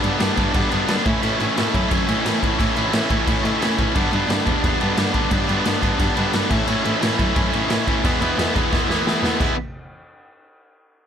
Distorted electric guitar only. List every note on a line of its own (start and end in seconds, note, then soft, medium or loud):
0.02 0.18 G2 medium
0.02 0.18 D3 medium
0.02 0.19 G3 medium
0.02 0.19 B3 medium
0.02 0.19 D4 medium
0.19 0.36 G2 medium
0.19 0.36 D3 medium
0.19 0.35 G3 medium
0.19 0.35 B3 medium
0.19 0.35 D4 loud
0.36 0.51 G2 loud
0.36 0.52 D3 loud
0.36 0.52 G3 loud
0.36 0.53 B3 loud
0.36 0.53 D4 loud
0.53 0.70 G2 medium
0.53 0.70 D3 loud
0.53 0.69 G3 medium
0.53 0.69 B3 medium
0.53 0.68 D4 medium
0.69 0.86 G2 medium
0.69 0.86 D3 medium
0.69 0.87 G3 medium
0.69 0.86 B3 medium
0.69 0.87 D4 loud
0.87 1.04 G2 loud
0.87 1.04 D3 loud
0.87 1.04 G3 loud
0.87 1.04 B3 loud
0.87 1.05 D4 loud
1.04 1.23 A2 loud
1.04 1.23 E3 loud
1.04 1.22 A3 loud
1.04 1.22 C#4 loud
1.04 1.22 E4 loud
1.22 1.38 A2 loud
1.22 1.39 E3 medium
1.22 1.39 A3 loud
1.22 1.39 C#4 loud
1.22 1.40 E4 loud
1.39 1.58 A2 medium
1.39 1.57 E3 medium
1.39 1.57 A3 medium
1.39 1.57 C#4 medium
1.39 1.56 E4 loud
1.56 1.73 A2 medium
1.56 1.73 E3 medium
1.56 1.74 A3 medium
1.56 1.74 C#4 medium
1.56 1.74 E4 medium
1.73 1.90 A2 loud
1.73 1.89 E3 loud
1.73 1.89 A3 loud
1.73 1.89 C#4 loud
1.73 1.88 E4 loud
1.89 2.06 A2 medium
1.89 2.06 E3 medium
1.89 2.07 A3 medium
1.89 2.07 C#4 medium
1.89 2.07 E4 loud
2.07 2.25 A2 medium
2.07 2.25 E3 medium
2.07 2.25 A3 medium
2.07 2.24 C#4 medium
2.07 2.24 E4 medium
2.25 2.40 A2 medium
2.25 2.40 E3 loud
2.25 2.40 A3 loud
2.25 2.41 C#4 medium
2.25 2.41 E4 loud
2.41 2.58 A2 medium
2.41 2.58 E3 medium
2.41 2.58 A3 medium
2.41 2.58 C#4 loud
2.41 2.57 E4 loud
2.58 2.74 A2 medium
2.58 2.75 E3 loud
2.58 2.75 A3 loud
2.58 2.75 C#4 loud
2.58 2.76 E4 loud
2.75 2.93 A2 medium
2.75 2.92 E3 medium
2.75 2.92 A3 medium
2.75 2.92 C#4 loud
2.75 2.91 E4 loud
2.92 3.08 A2 medium
2.92 3.08 E3 medium
2.92 3.09 A3 medium
2.92 3.09 C#4 medium
2.92 3.09 E4 medium
3.09 3.26 A2 loud
3.09 3.25 E3 loud
3.09 3.25 A3 loud
3.09 3.25 C#4 loud
3.09 3.24 E4 loud
3.26 3.41 A2 medium
3.26 3.42 E3 medium
3.26 3.43 A3 medium
3.26 3.43 C#4 medium
3.26 3.43 E4 medium
3.43 3.60 A2 medium
3.43 3.60 E3 medium
3.43 3.59 A3 medium
3.43 3.59 C#4 medium
3.43 3.59 E4 medium
3.60 3.76 A2 medium
3.60 3.77 E3 loud
3.60 3.78 A3 loud
3.60 3.78 C#4 loud
3.60 3.78 E4 loud
3.78 3.94 A2 medium
3.78 3.94 E3 medium
3.78 3.95 A3 loud
3.78 3.95 C#4 loud
3.78 3.95 E4 loud
3.94 4.13 G2 medium
3.94 4.12 D3 loud
3.94 4.13 G3 medium
3.94 4.12 B3 loud
3.94 4.12 D4 loud
4.12 4.28 G2 medium
4.12 4.28 D3 medium
4.12 4.29 G3 medium
4.12 4.30 B3 medium
4.12 4.30 D4 medium
4.29 4.46 G2 medium
4.29 4.46 D3 medium
4.29 4.45 G3 medium
4.29 4.45 B3 medium
4.29 4.45 D4 medium
4.46 4.62 G2 medium
4.46 4.63 D3 loud
4.46 4.63 G3 loud
4.46 4.64 B3 loud
4.46 4.64 D4 loud
4.64 4.81 G2 medium
4.64 4.81 D3 medium
4.64 4.80 G3 medium
4.64 4.80 B3 loud
4.64 4.80 D4 medium
4.81 4.97 G2 medium
4.81 4.97 D3 medium
4.81 4.97 G3 medium
4.81 4.98 B3 medium
4.81 4.98 D4 medium
4.98 5.15 G2 loud
4.98 5.14 D3 loud
4.98 5.14 G3 loud
4.98 5.14 B3 loud
4.98 5.14 D4 loud
5.15 5.30 G2 medium
5.15 5.30 D3 medium
5.15 5.31 G3 medium
5.15 5.31 B3 medium
5.15 5.31 D4 loud
5.31 5.49 G2 loud
5.31 5.48 D3 loud
5.31 5.48 G3 loud
5.31 5.47 B3 loud
5.31 5.47 D4 loud
5.49 5.64 G2 medium
5.49 5.65 D3 medium
5.49 5.65 G3 medium
5.49 5.65 B3 medium
5.49 5.65 D4 medium
5.65 5.82 G2 medium
5.65 5.82 D3 medium
5.65 5.81 G3 loud
5.65 5.81 B3 medium
5.65 5.80 D4 medium
5.82 5.97 G2 loud
5.82 5.97 D3 loud
5.82 5.98 G3 loud
5.82 5.98 B3 loud
5.82 5.99 D4 loud
5.99 6.16 G2 medium
5.99 6.16 D3 medium
5.99 6.15 G3 medium
5.99 6.15 B3 medium
5.99 6.14 D4 medium
6.15 6.31 G2 medium
6.15 6.32 D3 medium
6.15 6.32 G3 medium
6.15 6.32 B3 medium
6.15 6.32 D4 medium
6.32 6.49 G2 loud
6.32 6.49 D3 loud
6.32 6.50 G3 loud
6.32 6.50 B3 loud
6.32 6.50 D4 loud
6.49 6.67 A2 loud
6.49 6.68 E3 loud
6.49 6.67 A3 loud
6.49 6.66 C#4 loud
6.49 6.67 E4 loud
6.67 6.83 A2 medium
6.67 6.84 E3 medium
6.67 6.83 A3 loud
6.67 6.84 C#4 loud
6.67 6.84 E4 loud
6.84 7.01 A2 medium
6.84 7.01 E3 loud
6.84 7.00 A3 loud
6.84 7.00 C#4 medium
6.84 7.00 E4 loud
7.00 7.16 A2 medium
7.00 7.17 E3 medium
7.00 7.17 A3 medium
7.00 7.17 C#4 loud
7.00 7.18 E4 loud
7.17 7.35 A2 loud
7.17 7.36 E3 loud
7.17 7.35 A3 loud
7.17 7.34 C#4 loud
7.17 7.34 E4 loud
7.35 7.50 A2 medium
7.35 7.51 E3 medium
7.35 7.51 A3 medium
7.35 7.52 C#4 medium
7.35 7.52 E4 loud
7.51 7.69 A2 medium
7.51 7.69 E3 medium
7.51 7.68 A3 loud
7.51 7.67 C#4 medium
7.51 7.68 E4 medium
7.68 7.85 A2 loud
7.68 7.87 E3 loud
7.68 7.86 A3 loud
7.68 7.86 C#4 loud
7.68 7.87 E4 loud
7.86 8.03 A2 medium
7.86 8.03 E3 medium
7.86 8.03 A3 medium
7.86 8.03 C#4 medium
7.86 8.04 E4 loud
8.03 8.22 E3 loud
8.03 8.21 G#3 medium
8.03 8.21 B3 loud
8.03 8.20 E4 loud
8.21 8.36 E3 medium
8.21 8.37 G#3 medium
8.21 8.37 B3 medium
8.21 8.38 E4 medium
8.37 8.54 E3 medium
8.37 8.54 G#3 medium
8.37 8.54 B3 loud
8.37 8.53 E4 medium
8.54 8.70 E3 loud
8.54 8.70 G#3 loud
8.54 8.70 B3 loud
8.54 8.71 E4 loud
8.71 8.88 E3 medium
8.71 8.88 G#3 medium
8.71 8.88 B3 medium
8.71 8.87 E4 loud
8.89 9.04 E3 medium
8.89 9.04 G#3 medium
8.89 9.05 B3 medium
8.89 9.05 E4 loud
9.05 9.23 E3 loud
9.05 9.22 G#3 loud
9.05 9.22 B3 loud
9.05 9.21 E4 loud
9.22 9.39 E3 medium
9.22 9.39 G#3 medium
9.22 9.39 B3 medium
9.22 9.39 E4 medium
9.40 9.54 E3 medium
9.40 9.54 G#3 loud
9.40 9.54 B3 loud
9.40 9.55 E4 loud